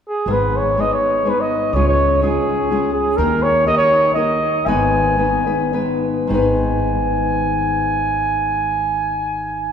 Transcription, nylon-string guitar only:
0.27 G#2 D#3 G#3 B3 D#4 G#4
0.77 G#3 B3 D#4 G#4
1.25 G#3 B3 D#4 G#4
1.74 C#3 G#3 C#4 F4 G#4
2.22 G#3 C#4 F4 G#4
2.71 G#3 C#4 F4 G#4
3.18 D#3 A#3 D#4 G4 A#4
3.66 A#3 D#4 G4 A#4
4.16 A#3 D#4 G4 A#4
4.67 G#2 D#3 G#3 B3 D#4 B4
5.17 G#3 B3 D#4 B4
5.46 G#3 B3 D#4 B4
5.73 G#3 B3 D#4 B4
6.27 G#2 D#3 G#3
6.32 B3 D#4 B4

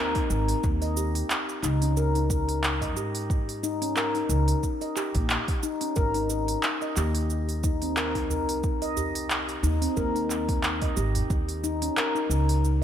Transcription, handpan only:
Already playing: A#4
0.16 D#4
0.30 A#4
0.82 D#5
0.97 G4
1.63 D#4
1.82 C#4
1.97 A#4
2.15 D#4
2.30 A#4
2.81 D#5
2.97 G4
3.63 D#4
3.82 C#4
3.97 A#4
4.15 D#4
4.30 A#4
4.82 D#5
4.97 G4
5.63 D#4
5.81 C#4
5.96 A#4
6.15 D#4
6.30 A#4
6.82 D#5
6.97 G4
7.64 D#4
7.82 C4
7.97 A#4
8.15 D#4
8.30 A#4
8.82 D#5
8.97 G4
9.63 D#4
9.82 C4
9.97 A#4
10.15 D#4
10.30 A#4
10.82 D#5
10.97 G4
11.64 D#4
11.82 C#4
11.97 A#4
12.15 D#4
12.31 A#4

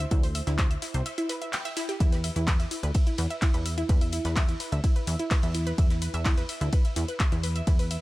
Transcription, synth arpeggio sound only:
0.11 E4 E5
0.23 C5 C6
0.35 E5 E6
0.47 E4 E5
0.59 C5 C6
0.71 E5 E6
0.82 E4 E5
0.94 C5 C6
1.06 E5 E6
1.18 E4 E5
1.30 B4 B5
1.42 E5 E6
1.53 G5 G6
1.65 E5 E6
1.77 E4 E5
1.89 G4 G5
2.00 E4 E5
2.12 B4 B5
2.24 E5 E6
2.36 E4 E5
2.48 B4 B5
2.60 E5 E6
2.71 E4 E5
2.83 B4 B5
2.95 E5 E6
3.07 E4 E5
3.18 B4 B5
3.30 E5 E6
3.42 E4 E5
3.54 B4 B5
3.66 E5 E6
3.78 E4 E5
3.89 B4 B5
4.01 E5 E6
4.13 E4 E5
4.25 B4 B5
4.37 E5 E6
4.49 E4 E5
4.60 B4 B5
4.72 E5 E6
4.84 E4 E5
4.96 B4 B5
5.07 E5 E6
5.19 E4 E5
5.31 B4 B5
5.43 E5 E6
5.55 E4 E5
5.67 B4 B5
5.78 E5 E6
5.90 E4 E5
6.02 B4 B5
6.14 E5 E6
6.25 E4 E5
6.38 B4 B5
6.49 E5 E6
6.61 E4 E5
6.73 B4 B5
6.85 E5 E6
6.96 E4 E5
7.08 B4 B5
7.20 E5 E6
7.32 E4 E5
7.44 B4 B5
7.56 E5 E6
7.67 E4 E5
7.79 B4 B5
7.91 E5 E6

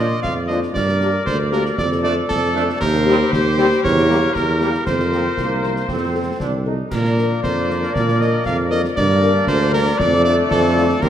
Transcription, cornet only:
Already playing: D#5
0.23 F5
0.47 D#5
0.74 D5
1.26 C5
1.52 A#4
1.78 D5
2.04 D5
2.29 A4
2.81 A#4
3.32 C5
3.84 C#5
4.35 A#4
4.87 C5
6.91 A#4
7.43 C5
7.94 D5
8.21 D#5
8.46 F5
8.71 D#5
8.96 D5
9.48 C5
9.74 A#4
9.99 D5
10.25 D5
10.50 A4
11.02 A#4

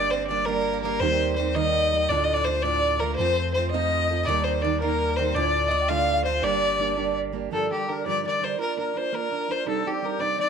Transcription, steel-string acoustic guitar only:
Already playing: G3 A#3 D4 G4
0.29 G3 A#3 D4 G4
0.46 G3 A#3 D4 G4
0.83 G3 A#3 D4 G4
1.01 D#3 G3 A#3 D#4 G4
1.37 G3 A#3 D#4 G4
1.55 D#3 G3 A#3 D#4 G4
1.91 G3 A#3 D#4 G4
2.10 D2 A2 D3 A3 D4 F4
2.46 D3 A3 D4 F4
2.63 D2 A2 D3 A3 D4 F4
3.00 D3 A3 D4 F4
3.18 F3 A3 C4 F4
3.55 F3 A3 C4 F4
3.73 F3 A3 C4 F4
4.09 F3 A3 C4 F4
4.27 D#3 G3 A#3 D#4
4.64 D#3 G3 A#3 D#4
4.82 D#3 G3 A#3 D#4
5.18 D#3 G3 A#3 D#4
5.35 D2 A2 D3 A3 D4 F4
5.70 D3 A3 D4 F4
5.89 D2 A2 D3 A3 D4 F4
6.24 D3 A3 D4 F4
6.42 G3 A#3 D4 G4
6.79 G3 A#3 D4 G4
6.96 G3 A#3 D4 G4
7.32 G3 A#3 D4 G4
7.50 G2 D3 F3 G3 D4 A#4
7.69 D3 G3 D4 A#4
7.87 D3 G3 D4 A#4
8.05 G2 D3 F3 G3 D4 A#4
8.24 D3 G3 D4 A#4
8.40 D3 G3 D4 A#4
8.57 A#3 D4 F4 A#4
8.77 A#3 D4 F4 A#4
8.94 A#3 D4 F4 A#4
9.12 A#3 D4 F4 A#4
9.31 A#3 D4 F4 A#4
9.48 A#3 D4 F4 A#4
9.65 C3 G3 C4 D4 D#4
9.84 G3 C4 D4 D#4
10.02 G3 C4 D4 D#4
10.18 C3 G3 C4 D4 D#4
10.38 G3 C4 D4 D#4

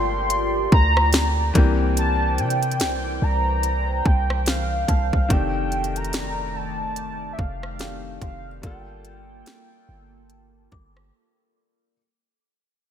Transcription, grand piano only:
Already playing: F3 A3 A#3 D4 G4
1.54 E3 A#3 C4 D4
1.58 G4
5.29 D#3 A3 C4 D4
5.33 G4
7.79 D#3 A3 C4 D4 G4
8.62 G3 A#3 D4 F4
8.66 A4

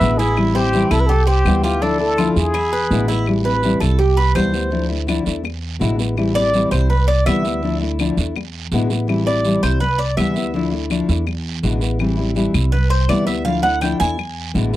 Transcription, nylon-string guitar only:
0.00 B2 D3 G#3 B3 E4
0.18 G#3 B3 E4
0.36 E3 G3 C4 E4
0.54 G3 C4 E4
0.72 E3 G3 C4 E4
0.90 G3 C4 E4
1.09 muted nylon-string guitar stroke
1.45 C3 E3 G3 B3 E4
1.63 G3 B3 E4
1.81 D3 F3 A3 D4 E4
2.00 A3 D4 E4
2.18 D3 F3 A3 D4 E4
2.36 A3 D4 E4
2.55 muted nylon-string guitar stroke
2.90 B2 D3 G#3 B3 E4
3.09 G#3 B3 E4
3.27 E3 G3 C4 E4
3.44 G3 C4 E4
3.63 E3 G3 C4 E4
3.81 G3 C4 E4
3.99 muted nylon-string guitar stroke
4.34 C3 E3 G3 B3 E4
4.52 G3 B3 E4
4.71 D3 F3 A3 D4 E4
4.89 A3 D4 E4
5.07 D3 F3 A3 D4 E4
5.25 A3 D4 E4
5.44 muted nylon-string guitar stroke
5.79 B2 D3 G#3 B3 E4
6.00 G#3 B3
6.16 E3 G3 C4 E4
6.35 G3 C4 E4
6.53 E3 G3 C4 E4
6.71 G3 C4 E4
6.89 muted nylon-string guitar stroke
7.25 C3 E3 G3 B3 E4
7.44 G3 B3 E4
7.62 D3 F3 A3 D4 E4
7.81 A3 D4 E4
7.99 D3 F3 A3 D4 E4
8.17 A3 D4 E4
8.36 muted nylon-string guitar stroke
8.72 B2 D3 G#3 B3 E4
8.90 G#3 B3 E4
9.07 E3 G3 C4 E4
9.25 G3 C4 E4
9.44 E3 G3 C4 E4
9.63 G3 C4 E4
9.81 muted nylon-string guitar stroke
10.17 C3 E3 G3 B3 E4
10.35 G3 B3 E4
10.54 D3 F3 A3 D4 E4
10.72 A3 D4 E4
10.90 D3 F3 A3 D4 E4
11.09 A3 D4 E4
11.27 muted nylon-string guitar stroke
11.63 B2 D3 G#3 B3 E4
11.80 G#3 B3 E4
11.99 E3 G3 C4 E4
12.17 G3 C4 E4
12.35 E3 G3 C4 E4
12.54 G3 C4 E4
12.73 muted nylon-string guitar stroke
13.08 C3 E3 G3 B3 E4
13.26 G3 B3 E4
13.45 D3 F3 A3 D4 E4
13.63 A3 D4 E4
13.81 D3 F3 A3 D4 E4
14.00 A3 D4 E4
14.18 muted nylon-string guitar stroke
14.54 B2 D3 G#3 B3 E4
14.73 E4

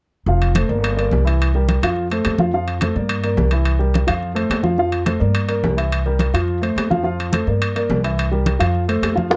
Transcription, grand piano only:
0.27 F3 F4 F5
0.56 A3 A4 C5
0.69 A#3 A#4 D5
0.96 A#3 A#4 D5
1.25 E3 E4 E5
1.55 G3 G4 A#4
1.83 F3 F4 F5
2.11 A3 A4 C5
2.39 F3 F4 F5
2.54 F3 F4 F5
2.82 A3 A4 C5
2.95 A#3 A#4 D5
3.24 A#3 A#4 D5
3.52 E3 E4 E5
3.79 G3 G4 A#4
4.07 F3 F4 F5
4.35 A3 A4 C5
4.63 F3 F4 F5
4.78 F3 F4 F5
5.06 A3 A4 C5
5.20 A#3 A#4 D5
5.48 A#3 A#4 D5
5.77 E3 E4 E5
6.06 G3 G4 A#4
6.34 F3 F4 F5
6.62 A3 A4 C5
6.90 F3 F4 F5
7.03 F3 F4 F5
7.32 A3 A4 C5
7.47 A#3 A#4 D5
7.76 A#3 A#4 D5
8.03 E3 E4 E5
8.32 G3 G4 A#4
8.59 F3 F4 F5
8.88 A3 A4 C5
9.15 F3 F4 F5
9.30 F3 F4 F5

